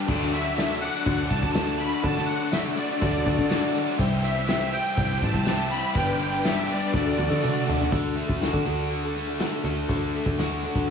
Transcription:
Already playing: D5 D6
0.06 D2 D3 F#3 A3 D4 F#4 A4 D5 F#5, kick, crash
0.20 D4 F#4 D5, snare
0.32 A3 D4 F#4 E5, closed hi-hat
0.44 D4 F#4 D5
0.56 D3 F#3 A3 D4 F#4 A4 D5, snare, closed hi-hat, tambourine
0.80 A3 D4 F#4 D5 F#5, closed hi-hat
0.94 closed hi-hat
1.05 D2 D3 F#3 A3 D4 F#4 A4 D5, kick, closed hi-hat
1.17 D4 F#4 D5
1.29 C2 A3 D4 F#4 D5 A5, kick, closed hi-hat
1.42 D2 D4 F#4 D5, kick
1.52 D3 F#3 A3 D4 F#4 A4 D5 A5, snare, closed hi-hat, tambourine
1.78 A3 D4 F#4 D5 B5, closed hi-hat
2.02 D3 F#3 A3 D4 F#4 A4 D5 A5, kick, closed hi-hat
2.16 D4 F#4 D5, snare
2.26 D4 F#4 F#5, closed hi-hat
2.30 A3
2.39 D4 F#4 D5
2.51 D3 F#3 A3 D4 F#4 A4 D5 E5, snare, closed hi-hat, tambourine
2.76 A3 D4 F#4 D5, closed hi-hat
2.88 D4 F#4 D5, closed hi-hat
2.99 D2 D3 F#3 A3 D4 F#4 A4 D5, kick, closed hi-hat
3.12 D4 F#4 D5
3.24 D2 A3 D4 F#4 D5, kick, closed hi-hat
3.38 D3 D4 F#4 D5, kick
3.49 D3 F#3 A3 D4 F#4 A4 D5, snare, closed hi-hat, tambourine
3.74 A3 D4 F#4 D5, closed hi-hat
3.86 closed hi-hat
3.98 C2 C3 E3 G3 C4 E4 G4 C5 E5 G5 E6, kick, closed hi-hat
4.12 G3 C4 E4 C5
4.22 G3 E4 G4 E5, closed hi-hat
4.37 G3 C4 E4 C5
4.47 C3 E3 G3 C4 E4 G4 C5 E5, snare, closed hi-hat, tambourine
4.71 G3 C4 E4 G4 C5 G5, closed hi-hat
4.85 closed hi-hat
4.95 C2 C3 E3 G3 E4 G4 C5 D5, kick, closed hi-hat
5.09 G3 C4 E4 C5
5.21 A1 G3 C4 E4 C5 A5, kick, closed hi-hat
5.33 C2 G3 C4 E4 C5, kick
5.45 C3 E3 G3 C4 E4 G4 C5 E5 A5, snare, closed hi-hat, tambourine
5.49 G4
5.70 G3 C4 E4 G4 C5 B5, closed hi-hat
5.93 G1 G2 D3 G3 B3 D4 G4 B4 D5 G5 D6, kick, closed hi-hat
6.08 D4 G4 B4
6.19 G3 B3 D4 G4 G5, closed hi-hat
6.32 D4 G4 B4
6.43 G3 B3 D4 G4 B4 D5 E5, snare, closed hi-hat, tambourine
6.68 G3 B3 D4 G4 B4 D5, closed hi-hat
6.81 closed hi-hat
6.93 D2 D3 A3 D4 F#4 A4 D5 F#5, kick, snare
7.04 D4 F#4 A4
7.17 D2 A3 D4 F#4 A4, high tom
7.30 D3 D4 F#4 A4, high tom
7.41 D3 A3 D4 F#4 A4 D5, mid tom, tambourine
7.65 A3 D4 F#4 A4, floor tom
7.70 A3
7.81 floor tom
7.90 D2 D3 A3 D4 F#4 A4, kick, closed hi-hat
8.15 A3 D4 F#4 A4, closed hi-hat
8.27 D2 D4 F#4 A4, kick
8.40 D3 A3 D4 F#4 A4, snare, closed hi-hat
8.53 D3, kick
8.65 D2 A3 D4 F#4 A4, closed hi-hat
8.90 D3, closed hi-hat
9.03 D4 F#4 A4
9.15 A3 D4 F#4 A4, closed hi-hat
9.27 D4 F#4 A4
9.39 D3 A3 D4 F#4 A4, snare, closed hi-hat
9.64 D2 A3 D4 F#4 A4, closed hi-hat
9.88 D2 D3 A3 D4 F#4 A4, kick, closed hi-hat
10.14 A3, closed hi-hat
10.25 D2 D4 F#4 A4, kick
10.37 D3 A3 D4 F#4 A4, snare, closed hi-hat
10.62 A3 D4 F#4 A4, closed hi-hat
10.75 D2, kick

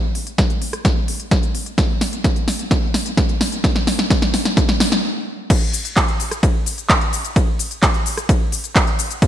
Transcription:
0.15 open hi-hat
0.27 closed hi-hat
0.38 kick, snare, closed hi-hat
0.50 closed hi-hat
0.62 open hi-hat
0.73 cross-stick, closed hi-hat
0.85 kick, snare, closed hi-hat
1.08 open hi-hat
1.20 closed hi-hat
1.31 kick, snare, closed hi-hat
1.43 closed hi-hat
1.55 open hi-hat
1.66 closed hi-hat
1.78 kick, snare, closed hi-hat
2.01 snare, open hi-hat
2.13 closed hi-hat
2.24 kick, snare, closed hi-hat
2.36 closed hi-hat
2.48 snare, open hi-hat
2.59 closed hi-hat
2.71 kick, snare, closed hi-hat
2.94 snare, open hi-hat
3.06 closed hi-hat
3.17 kick, snare, closed hi-hat
3.29 closed hi-hat
3.41 snare, open hi-hat
3.52 closed hi-hat
3.64 kick, snare, closed hi-hat
3.76 snare
3.87 snare, open hi-hat
3.99 snare, closed hi-hat
4.11 kick, snare, closed hi-hat
4.22 snare, closed hi-hat
4.34 snare, open hi-hat
4.45 snare, closed hi-hat
4.57 kick, snare, closed hi-hat
4.69 snare
4.80 snare, open hi-hat
4.92 snare, closed hi-hat
5.50 kick, closed hi-hat, crash, ride, shaker
5.73 open hi-hat, shaker
5.85 closed hi-hat, shaker
5.97 kick, clap, closed hi-hat, ride, shaker
6.08 closed hi-hat
6.20 open hi-hat, shaker
6.31 cross-stick, closed hi-hat, shaker
6.43 kick, closed hi-hat, ride, shaker
6.66 open hi-hat, shaker
6.78 closed hi-hat, shaker
6.90 kick, clap, closed hi-hat, ride, shaker
7.01 closed hi-hat
7.13 open hi-hat, shaker
7.24 closed hi-hat, shaker
7.36 kick, closed hi-hat, ride, shaker
7.59 open hi-hat, shaker
7.71 closed hi-hat, shaker
7.83 kick, clap, closed hi-hat, ride, shaker
7.94 closed hi-hat
8.06 open hi-hat, shaker
8.18 cross-stick, closed hi-hat, shaker
8.29 kick, closed hi-hat, ride, shaker
8.52 open hi-hat, shaker
8.64 closed hi-hat, shaker
8.76 kick, clap, closed hi-hat, ride, shaker
8.87 closed hi-hat
8.99 open hi-hat, shaker
9.11 closed hi-hat, shaker
9.22 kick, closed hi-hat, ride, shaker

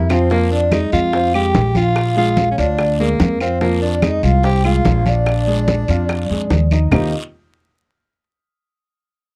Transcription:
Already playing: F2
0.09 F3 C4 F4 C5 F5, high bongo, short guiro, claves
0.30 F3 A#3 F4 A#4, high bongo, high conga, long guiro
0.51 D4 D5, high conga
0.72 G#3 D#4 G#4 D#5, high bongo, high conga, short guiro, claves
0.92 F2 F4 F5, high conga, short guiro
1.13 C4 C5, high bongo, high conga, long guiro
1.34 G#3 G4 G5, high conga, claves
1.54 A#1, high bongo, low bongo, high conga, short guiro
1.75 F4 F5, high conga, short guiro
1.96 high bongo, long guiro, claves
2.16 G#3 F4 G#4 F5, high bongo, high conga
2.37 high bongo, high conga, short guiro
2.51 C#4 C#5
2.58 D2 D4 F4 D5 F5, high bongo, short guiro
2.78 high bongo, high conga, long guiro, claves
2.99 G#3 A#3 G#4 A#4, high conga
3.20 F2, high bongo, low bongo, high conga, short guiro
3.40 C4 F4 C5 F5, high bongo, short guiro, claves
3.61 F3 A#3 F4 A#4, high bongo, high conga, long guiro
3.82 D4 D5, high conga
4.02 G#3 D#4 G#4 D#5, high bongo, high conga, short guiro, claves
4.23 C2 F4 F5, high conga, short guiro
4.43 C4 G4 C5 G5, high bongo, high conga, long guiro
4.64 G#3 F4 G#4 F5, high conga, claves
4.85 A#1, high bongo, low bongo, high conga, short guiro
5.06 D4 F4 D5 F5, high conga, short guiro
5.26 high bongo, high conga, long guiro, claves
5.47 G#3 G#4, high bongo, high conga
5.68 high bongo, high conga, short guiro
5.88 F2 F4 F5, high bongo, short guiro
6.09 high bongo, high conga, long guiro, claves
6.30 F2 G#3 G#4, high conga
6.50 D#2, high bongo, low bongo, high conga, short guiro
6.71 D#4 D#5, high bongo, high conga, short guiro, claves
6.91 D#2 D#3 A#3 C4 D#4 F4 G4 D#5, low bongo, low conga, long guiro, claves

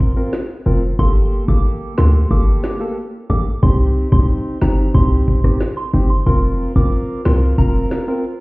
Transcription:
Already playing: C4 F4 A#4 C6
0.00 kick
0.16 C4 F4 A#4
0.33 snare
0.66 F1 C4 F4 A#4
0.99 G1 A#3 G4 A4 C6, kick
1.48 G1 A#3 G4 A4 D6, kick
1.98 D2 A#3 G4 A4 C6, snare
2.31 G1 A#3 G4 A4 D6, kick
2.64 snare
2.80 A#3 G4 A4
3.30 A1 A#3 G4 A4 D6, kick
3.62 C2 C4 D#4 G4 C6, kick
4.12 C2 C4 D#4 G4 C6, kick
4.61 G1 C4 D#4 G4 A#5, snare
4.94 C2 C4 D#4 G4 C6, kick
5.28 kick
5.44 C4 D#4 G4, kick, cross-stick
5.61 snare
5.77 C6
5.93 G1 C4 D#4 G4
6.10 C6
6.26 F1 C4 F4 A#4 C6, kick, closed hi-hat
6.76 F1 C4 F4 A#4 D6, kick
6.92 closed hi-hat
7.25 C2 C4 F4 A#4 C6, snare
7.58 F1 C4 F4 A#4 A#5, kick, closed hi-hat
7.91 snare
8.08 C4 F4 A#4
8.25 closed hi-hat

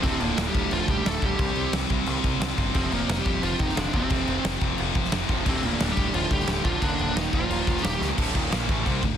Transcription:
0.02 D1 D2 A2 C3 D3 C4, kick, crash
0.20 D1 A#2 A#3, crash
0.37 D1, snare, crash
0.48 G3 G4
0.53 D1 D2 A2 D3, kick, crash
0.71 D1 F3 F4, crash
0.88 D1 G3 G4, kick, crash
1.05 D1 D2 A2 D3 A3 A4, snare, crash
1.20 D1 D2 A2 D3, kick, crash
1.25 G3 G4
1.39 C2 C3 G3 C4, kick, crash
1.56 C2, crash
1.73 C2, snare, crash
1.89 C2 C3 G3 C4, kick, crash
2.06 C2, crash
2.24 C2, kick, crash
2.40 C2 C3 G3 C4, snare, crash
2.57 G1 C3 G3 C4, kick, crash
2.73 F1 F2 C3 F3 C4, kick, crash
2.91 F1 A#2 A#3, crash
3.08 F1, snare, crash
3.17 G3 G4
3.24 F1 F2 C3 F3, kick, crash
3.41 F1 F3 F4, crash
3.58 F1 D#3 D#4, kick, crash
3.69 snare
3.75 F1 F2 C3 D3 F3 D4, snare, crash
3.93 F1 F2 C3 F3 C4, kick, crash
4.10 F1 F2 C3 F3, kick, crash
4.27 F1, crash
4.45 F1, snare, crash
4.60 F1 F2 C3 F3, kick, crash
4.78 F1, crash
4.95 F1, kick, crash
5.05 snare
5.11 F1 F2 C3 F3, snare, crash
5.28 F1 F2 C3 F3, kick, crash
5.44 D1 D2 A2 C3 D3, kick, crash
5.49 C4
5.63 D1 A#2 A#3, crash
5.80 D1, snare, crash
5.88 G3 G4
5.95 D1 D2 A2 D3, kick, crash
6.13 D1 F3 F4, crash
6.31 D1 G3 G4, kick, crash
6.40 snare
6.46 D1 D2 A2 D3, snare, crash
6.64 D1 A2 D3 F3 F4, kick, crash
6.68 D2
6.79 D#1 D#2 A#2 D3 D#3 D4, kick, crash
6.99 D#1, crash
7.14 D#1 D#3 D#4, snare, crash
7.30 D#1 D#2 A#2 D#3 F3, kick, crash
7.34 F4
7.49 D#1, crash
7.67 D#1, kick, crash
7.77 snare
7.82 D#1 D#2 A#2 D#3 G3 G4, snare, crash
7.99 C#2 D#2 A#2 D#3, snare
8.16 D1 D2 A2 D3, kick, crash
8.28 snare
8.33 D#1 D#2 A#2 D#3, kick, crash
8.50 A#1 A#2 F3 A#3, snare, crash
8.68 A1 A2 E3 A3, kick, crash
8.85 C2 C3 G3 C4, kick, crash
9.02 D1 D2 A2, kick, crash

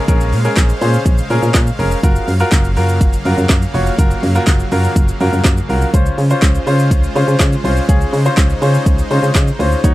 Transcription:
Already playing: C#3 G#3 F5, downlifter
0.08 A#1 C#4 G#4 A#4 C5, kick, closed hi-hat, shaker
0.20 shaker
0.33 A#2, open hi-hat, shaker
0.45 C#4 G#4 A#4, shaker
0.56 A#1, kick, snare, clap, closed hi-hat, shaker
0.69 shaker
0.81 A#2 C#4 G#4 C5, open hi-hat, shaker
0.94 shaker
1.06 A#1, kick, closed hi-hat, shaker
1.18 shaker
1.30 A#2 C#4 G#4 A#4, open hi-hat, shaker
1.43 A#2, shaker
1.54 A#2, kick, snare, clap, closed hi-hat, shaker
1.67 shaker
1.79 F1 C#4 G#4 A#4, open hi-hat, shaker
1.91 shaker
2.03 F#1 F#3 A#3 F4 F#4 A#4, kick, closed hi-hat, shaker
2.16 shaker
2.28 F#2, open hi-hat, shaker
2.40 F4 F#4 A#4, shaker
2.51 F#1, kick, snare, clap, closed hi-hat, shaker
2.64 shaker
2.76 F#2 F4 F#4 A#4, open hi-hat, shaker
2.89 shaker
3.01 F#1, kick, closed hi-hat, shaker
3.13 shaker
3.25 F#2 F4 F#4 A#4, open hi-hat, shaker
3.38 F#2, shaker
3.49 F#2, kick, snare, clap, closed hi-hat, shaker
3.62 shaker
3.74 F1 F4 F#4 C#5, open hi-hat, shaker
3.86 shaker
3.98 F#1 F4 F#4 A#4, kick, closed hi-hat, shaker
4.11 shaker
4.23 F#2, open hi-hat, shaker
4.35 F4 F#4 A#4, shaker
4.47 F#1, kick, snare, clap, closed hi-hat, shaker
4.60 shaker
4.72 F#2 F4 F#4 A#4, open hi-hat, shaker
4.84 shaker
4.96 F#1, kick, closed hi-hat, shaker
5.08 shaker
5.20 F#2 F4 F#4 A#4, open hi-hat, shaker
5.33 F#2, shaker
5.44 F#2, kick, snare, clap, closed hi-hat, shaker
5.57 shaker
5.69 C2 F4 F#4 A#4, open hi-hat, shaker
5.82 shaker
5.94 C#2 G#3 C#4 F4 C5, kick, closed hi-hat, shaker
6.06 shaker
6.18 C#3, open hi-hat, shaker
6.30 C#4 F4 C5, shaker
6.42 C#2, kick, snare, clap, closed hi-hat, shaker
6.55 shaker
6.67 C#3 C#4 F4 C5, open hi-hat, shaker
6.79 shaker
6.91 C#2, kick, closed hi-hat, shaker
7.03 shaker
7.16 C#3 C#4 F4 C5, open hi-hat, shaker
7.28 C#3, shaker
7.39 C#3, kick, snare, clap, closed hi-hat, shaker
7.52 shaker
7.64 C2 C#4 F4 C5, open hi-hat, shaker
7.77 shaker
7.89 C#2 C#4 D#4 F4 G#4, kick, closed hi-hat, shaker
8.01 shaker
8.13 C#3, open hi-hat, shaker
8.25 C#4 F4 C5, shaker
8.37 C#2, kick, snare, clap, closed hi-hat, shaker
8.50 shaker
8.62 C#3 C#4 F4 C5, open hi-hat, shaker
8.74 shaker
8.86 C#2, kick, closed hi-hat, shaker
8.98 shaker
9.10 C#3 C#4 F4 C5, open hi-hat, shaker
9.23 C#3, shaker
9.35 C#3, kick, snare, clap, closed hi-hat, shaker
9.48 shaker
9.59 D2 C#4 F4 C5, open hi-hat, shaker
9.72 shaker
9.84 D#2 D#3 F#3 A#3 C#4 D#4 F#4 C#5, kick, closed hi-hat, shaker

